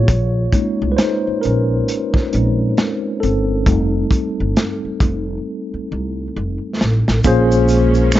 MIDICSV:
0, 0, Header, 1, 6, 480
1, 0, Start_track
1, 0, Tempo, 895522
1, 41, Time_signature, 4, 2, 24, 8
1, 4395, End_track
2, 0, Start_track
2, 0, Title_t, "Tine electric piano"
2, 0, Program_c, 0, 4
2, 0, Control_c, 0, 64, 127
2, 0, Note_on_c, 0, 65, 67
2, 0, Note_on_c, 0, 73, 90
2, 47, Control_c, 0, 64, 0
2, 125, Control_c, 0, 64, 127
2, 288, Note_on_c, 0, 56, 50
2, 290, Note_on_c, 0, 58, 47
2, 294, Note_on_c, 0, 61, 46
2, 295, Note_on_c, 0, 63, 57
2, 475, Note_off_c, 0, 65, 0
2, 492, Note_on_c, 0, 71, 62
2, 508, Note_off_c, 0, 73, 0
2, 518, Note_on_c, 0, 72, 87
2, 521, Note_off_c, 0, 71, 0
2, 526, Note_off_c, 0, 63, 0
2, 533, Note_on_c, 0, 63, 73
2, 627, Note_off_c, 0, 72, 0
2, 638, Note_off_c, 0, 63, 0
2, 758, Note_on_c, 0, 70, 80
2, 766, Note_off_c, 0, 61, 0
2, 772, Note_on_c, 0, 61, 64
2, 983, Note_off_c, 0, 56, 0
2, 984, Note_off_c, 0, 58, 0
2, 1241, Note_off_c, 0, 61, 0
2, 1246, Note_on_c, 0, 56, 44
2, 1247, Note_on_c, 0, 61, 41
2, 1248, Note_on_c, 0, 60, 41
2, 1248, Note_on_c, 0, 63, 50
2, 1462, Note_off_c, 0, 56, 0
2, 1463, Note_off_c, 0, 60, 0
2, 1463, Note_off_c, 0, 61, 0
2, 1463, Note_off_c, 0, 63, 0
2, 1716, Note_on_c, 0, 69, 77
2, 1732, Note_on_c, 0, 60, 60
2, 1748, Note_off_c, 0, 70, 0
2, 1963, Note_on_c, 0, 55, 51
2, 1967, Note_on_c, 0, 57, 44
2, 1969, Control_c, 0, 64, 0
2, 1971, Note_on_c, 0, 63, 51
2, 2060, Control_c, 0, 64, 127
2, 2298, Note_off_c, 0, 55, 0
2, 2301, Note_off_c, 0, 57, 0
2, 2303, Note_off_c, 0, 63, 0
2, 3377, Note_off_c, 0, 69, 0
2, 3385, Note_off_c, 0, 60, 0
2, 3884, Note_on_c, 0, 58, 114
2, 3886, Note_on_c, 0, 61, 105
2, 3887, Control_c, 0, 64, 0
2, 3890, Note_on_c, 0, 65, 96
2, 3895, Note_on_c, 0, 68, 107
2, 3898, Note_on_c, 0, 72, 127
2, 3981, Control_c, 0, 64, 127
2, 4395, Note_off_c, 0, 58, 0
2, 4395, Note_off_c, 0, 61, 0
2, 4395, Note_off_c, 0, 65, 0
2, 4395, Note_off_c, 0, 68, 0
2, 4395, Note_off_c, 0, 72, 0
2, 4395, End_track
3, 0, Start_track
3, 0, Title_t, "String section"
3, 0, Program_c, 1, 48
3, 3877, Note_on_c, 1, 58, 66
3, 3880, Note_on_c, 1, 56, 69
3, 3880, Note_on_c, 1, 61, 76
3, 4395, Note_off_c, 1, 56, 0
3, 4395, Note_off_c, 1, 58, 0
3, 4395, Note_off_c, 1, 61, 0
3, 4395, End_track
4, 0, Start_track
4, 0, Title_t, "Upright bass"
4, 0, Program_c, 2, 32
4, 49, Note_on_c, 2, 34, 91
4, 236, Note_off_c, 2, 34, 0
4, 438, Note_on_c, 2, 36, 82
4, 509, Note_off_c, 2, 36, 0
4, 777, Note_on_c, 2, 34, 74
4, 960, Note_off_c, 2, 34, 0
4, 1255, Note_on_c, 2, 34, 83
4, 1439, Note_off_c, 2, 34, 0
4, 1733, Note_on_c, 2, 31, 81
4, 1971, Note_off_c, 2, 31, 0
4, 1971, Note_on_c, 2, 29, 83
4, 2157, Note_off_c, 2, 29, 0
4, 2360, Note_on_c, 2, 31, 74
4, 2430, Note_off_c, 2, 31, 0
4, 2689, Note_on_c, 2, 29, 79
4, 2876, Note_off_c, 2, 29, 0
4, 3172, Note_on_c, 2, 36, 76
4, 3358, Note_off_c, 2, 36, 0
4, 3411, Note_on_c, 2, 29, 79
4, 3520, Note_off_c, 2, 29, 0
4, 3657, Note_on_c, 2, 33, 79
4, 3764, Note_off_c, 2, 33, 0
4, 3800, Note_on_c, 2, 33, 75
4, 3870, Note_off_c, 2, 33, 0
4, 3888, Note_on_c, 2, 34, 103
4, 4378, Note_off_c, 2, 34, 0
4, 4378, Note_on_c, 2, 36, 90
4, 4395, Note_off_c, 2, 36, 0
4, 4395, End_track
5, 0, Start_track
5, 0, Title_t, "Muted upright bass strokes"
5, 682, Note_on_c, 9, 29, 44
5, 735, Note_off_c, 9, 29, 0
5, 1153, Note_on_c, 9, 29, 43
5, 1207, Note_off_c, 9, 29, 0
5, 2599, Note_on_c, 9, 29, 42
5, 2652, Note_off_c, 9, 29, 0
5, 3075, Note_on_c, 9, 29, 41
5, 3129, Note_off_c, 9, 29, 0
5, 4395, End_track
6, 0, Start_track
6, 0, Title_t, "Drums"
6, 43, Note_on_c, 9, 36, 103
6, 45, Note_on_c, 9, 42, 68
6, 97, Note_off_c, 9, 36, 0
6, 99, Note_off_c, 9, 42, 0
6, 281, Note_on_c, 9, 36, 82
6, 285, Note_on_c, 9, 42, 53
6, 335, Note_off_c, 9, 36, 0
6, 339, Note_off_c, 9, 42, 0
6, 526, Note_on_c, 9, 42, 78
6, 528, Note_on_c, 9, 38, 98
6, 579, Note_off_c, 9, 42, 0
6, 582, Note_off_c, 9, 38, 0
6, 766, Note_on_c, 9, 42, 58
6, 819, Note_off_c, 9, 42, 0
6, 1009, Note_on_c, 9, 42, 84
6, 1063, Note_off_c, 9, 42, 0
6, 1146, Note_on_c, 9, 36, 77
6, 1158, Note_on_c, 9, 38, 32
6, 1199, Note_off_c, 9, 36, 0
6, 1212, Note_off_c, 9, 38, 0
6, 1247, Note_on_c, 9, 42, 60
6, 1301, Note_off_c, 9, 42, 0
6, 1487, Note_on_c, 9, 42, 62
6, 1490, Note_on_c, 9, 38, 101
6, 1540, Note_off_c, 9, 42, 0
6, 1544, Note_off_c, 9, 38, 0
6, 1731, Note_on_c, 9, 42, 58
6, 1784, Note_off_c, 9, 42, 0
6, 1963, Note_on_c, 9, 36, 104
6, 1967, Note_on_c, 9, 42, 64
6, 2017, Note_off_c, 9, 36, 0
6, 2021, Note_off_c, 9, 42, 0
6, 2201, Note_on_c, 9, 36, 79
6, 2206, Note_on_c, 9, 42, 60
6, 2254, Note_off_c, 9, 36, 0
6, 2260, Note_off_c, 9, 42, 0
6, 2447, Note_on_c, 9, 42, 75
6, 2449, Note_on_c, 9, 38, 96
6, 2500, Note_off_c, 9, 42, 0
6, 2503, Note_off_c, 9, 38, 0
6, 2682, Note_on_c, 9, 36, 86
6, 2683, Note_on_c, 9, 42, 55
6, 2735, Note_off_c, 9, 36, 0
6, 2737, Note_off_c, 9, 42, 0
6, 3650, Note_on_c, 9, 38, 80
6, 3704, Note_off_c, 9, 38, 0
6, 3795, Note_on_c, 9, 38, 77
6, 3848, Note_off_c, 9, 38, 0
6, 3880, Note_on_c, 9, 82, 58
6, 3883, Note_on_c, 9, 36, 117
6, 3888, Note_on_c, 9, 42, 74
6, 3933, Note_off_c, 9, 82, 0
6, 3937, Note_off_c, 9, 36, 0
6, 3942, Note_off_c, 9, 42, 0
6, 4029, Note_on_c, 9, 82, 45
6, 4082, Note_off_c, 9, 82, 0
6, 4117, Note_on_c, 9, 82, 50
6, 4127, Note_on_c, 9, 42, 67
6, 4171, Note_off_c, 9, 82, 0
6, 4181, Note_off_c, 9, 42, 0
6, 4258, Note_on_c, 9, 82, 44
6, 4312, Note_off_c, 9, 82, 0
6, 4352, Note_on_c, 9, 26, 69
6, 4352, Note_on_c, 9, 82, 71
6, 4368, Note_on_c, 9, 42, 83
6, 4371, Note_on_c, 9, 38, 108
6, 4395, Note_off_c, 9, 26, 0
6, 4395, Note_off_c, 9, 38, 0
6, 4395, Note_off_c, 9, 42, 0
6, 4395, Note_off_c, 9, 82, 0
6, 4395, End_track
0, 0, End_of_file